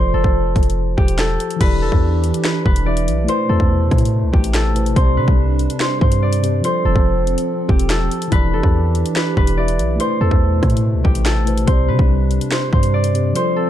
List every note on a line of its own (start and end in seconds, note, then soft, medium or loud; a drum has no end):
0.00 0.13 F1 loud
0.00 1.56 F3 medium
0.00 1.57 F4 medium
0.00 1.59 A4 medium
0.00 1.60 C5 medium
0.00 1.67 C5 loud
0.00 1.36 D5 medium
0.14 0.24 F1 loud
0.14 1.18 A4 medium
0.24 0.54 F1 loud
0.24 kick loud
0.56 0.96 F1 loud
0.56 kick medium
0.56 closed hi-hat soft
0.63 closed hi-hat medium
0.70 closed hi-hat medium
0.97 1.38 E1 loud
0.97 3.33 G4 medium
0.97 kick loud
1.08 closed hi-hat medium
1.19 1.82 A4 medium
1.19 finger snap loud
1.19 snare loud
1.19 closed hi-hat medium
1.40 closed hi-hat medium
1.51 closed hi-hat medium
1.56 2.82 E3 medium
1.56 2.83 E4 medium
1.61 1.83 E1 loud
1.61 3.27 E3 medium
1.61 3.27 D4 medium
1.61 3.27 G4 medium
1.61 2.84 G4 medium
1.61 2.44 B4 loud
1.61 2.86 D5 medium
1.61 kick loud
1.61 closed hi-hat loud
1.61 crash loud
1.82 1.92 F1 loud
1.82 3.49 A4 medium
1.92 2.32 E2 loud
1.92 kick loud
2.24 closed hi-hat medium
2.34 closed hi-hat medium
2.45 2.65 B4 medium
2.45 finger snap medium
2.45 snare loud
2.66 3.09 E1 loud
2.66 3.35 B4 medium
2.66 kick loud
2.76 closed hi-hat medium
2.84 3.27 E3 medium
2.84 3.25 E4 soft
2.84 3.29 G4 soft
2.84 4.71 D5 medium
2.84 3.29 E5 medium
2.97 closed hi-hat medium
3.08 3.27 B1 loud
3.08 closed hi-hat medium
3.24 4.70 A3 medium
3.24 4.71 E4 medium
3.28 4.95 B2 medium
3.28 6.61 C3 medium
3.28 4.95 A3 medium
3.28 4.73 B4 medium
3.28 4.96 C5 loud
3.28 4.74 C5 medium
3.28 closed hi-hat loud
3.49 3.59 E2 loud
3.49 4.54 A4 medium
3.60 3.90 E2 loud
3.60 kick loud
3.91 4.24 A2 loud
3.91 kick loud
3.91 cross-stick medium
3.91 closed hi-hat soft
3.98 closed hi-hat medium
4.05 closed hi-hat medium
4.23 4.33 C2 loud
4.33 4.94 A1 loud
4.33 6.68 G4 medium
4.33 kick loud
4.44 closed hi-hat medium
4.54 6.74 A4 medium
4.54 finger snap loud
4.54 snare loud
4.54 closed hi-hat medium
4.74 4.96 A3 soft
4.74 4.96 E4 soft
4.74 4.97 B4 soft
4.74 4.97 C5 medium
4.74 closed hi-hat medium
4.86 closed hi-hat medium
4.94 5.19 C2 loud
4.94 6.39 C3 medium
4.94 6.62 G3 medium
4.94 6.40 C4 medium
4.94 6.63 D4 medium
4.94 5.23 C5 loud
4.94 kick loud
4.94 closed hi-hat medium
4.99 6.41 G4 medium
4.99 6.43 D5 medium
5.17 5.27 C3 medium
5.17 5.87 B4 medium
5.28 5.68 C2 loud
5.28 kick loud
5.59 closed hi-hat medium
5.70 closed hi-hat medium
5.80 6.01 C5 medium
5.80 finger snap medium
5.80 snare loud
6.01 6.62 G2 loud
6.01 6.64 C5 medium
6.01 kick loud
6.12 closed hi-hat medium
6.22 8.07 D5 medium
6.33 closed hi-hat medium
6.41 6.63 C3 soft
6.41 6.64 C4 soft
6.41 6.64 G4 soft
6.41 6.65 C5 medium
6.41 closed hi-hat medium
6.61 8.27 F3 medium
6.61 8.30 F3 medium
6.61 8.30 C4 medium
6.61 8.28 F4 medium
6.61 8.30 A4 medium
6.61 8.38 C5 loud
6.61 closed hi-hat loud
6.66 8.30 A4 medium
6.66 8.31 C5 medium
6.85 6.95 F1 loud
6.85 7.90 A4 medium
6.96 7.36 F1 loud
6.96 kick loud
7.27 closed hi-hat medium
7.38 closed hi-hat medium
7.69 8.09 E1 loud
7.69 10.04 G4 medium
7.69 kick loud
7.79 closed hi-hat medium
7.90 8.53 A4 medium
7.90 finger snap loud
7.90 snare loud
7.90 closed hi-hat medium
8.11 closed hi-hat medium
8.22 closed hi-hat medium
8.28 9.53 E3 medium
8.28 9.54 E4 medium
8.32 8.55 E1 loud
8.32 9.98 E3 medium
8.32 9.98 D4 medium
8.32 9.98 G4 medium
8.32 9.56 G4 medium
8.32 9.16 B4 loud
8.32 9.57 D5 medium
8.32 kick loud
8.32 closed hi-hat medium
8.53 8.63 F1 loud
8.53 10.20 A4 medium
8.63 9.04 E2 loud
8.63 kick loud
8.95 closed hi-hat medium
9.06 closed hi-hat medium
9.16 9.37 B4 medium
9.16 finger snap medium
9.16 snare loud
9.37 9.80 E1 loud
9.37 10.06 B4 medium
9.37 kick loud
9.47 closed hi-hat medium
9.56 9.99 E3 medium
9.56 9.97 E4 soft
9.56 10.00 G4 soft
9.56 11.42 D5 medium
9.56 10.01 E5 medium
9.68 closed hi-hat medium
9.79 9.99 B1 loud
9.79 closed hi-hat medium
9.96 11.42 A3 medium
9.96 11.43 E4 medium
10.00 11.66 B2 medium
10.00 13.32 C3 medium
10.00 11.66 A3 medium
10.00 11.44 B4 medium
10.00 11.67 C5 loud
10.00 11.45 C5 medium
10.00 closed hi-hat medium
10.21 10.31 E2 loud
10.21 11.25 A4 medium
10.31 10.61 E2 loud
10.31 kick loud
10.63 10.96 A2 loud
10.63 kick loud
10.63 cross-stick medium
10.63 closed hi-hat soft
10.70 closed hi-hat medium
10.77 closed hi-hat medium
10.94 11.04 C2 loud
11.04 11.65 A1 loud
11.04 13.39 G4 medium
11.04 kick loud
11.15 closed hi-hat medium
11.26 13.45 A4 medium
11.26 finger snap loud
11.26 snare loud
11.26 closed hi-hat medium
11.45 11.67 A3 soft
11.45 11.68 E4 soft
11.45 11.68 B4 soft
11.45 11.69 C5 medium
11.45 closed hi-hat medium
11.58 closed hi-hat medium
11.65 11.90 C2 loud
11.65 13.10 C3 medium
11.65 13.34 G3 medium
11.65 13.11 C4 medium
11.65 13.34 D4 medium
11.65 11.94 C5 loud
11.65 kick loud
11.65 closed hi-hat medium
11.70 13.13 G4 medium
11.70 13.14 D5 medium
11.88 11.98 C3 loud
11.88 12.58 B4 medium
11.99 12.39 C2 loud
11.99 kick loud
12.31 closed hi-hat medium
12.41 closed hi-hat medium
12.52 12.72 C5 medium
12.52 finger snap medium
12.52 snare loud
12.72 13.33 G2 loud
12.72 13.36 C5 medium
12.72 kick loud
12.83 closed hi-hat medium
12.94 13.70 D5 medium
13.04 closed hi-hat medium
13.13 13.35 C3 soft
13.13 13.35 C4 soft
13.13 13.36 G4 soft
13.13 13.36 C5 medium
13.13 closed hi-hat medium
13.33 13.70 F3 medium
13.33 13.70 C4 medium
13.33 13.70 F4 medium
13.33 13.70 A4 medium
13.33 13.70 C5 loud
13.33 closed hi-hat medium
13.38 13.70 A4 medium
13.38 13.70 C5 medium
13.56 13.70 A4 medium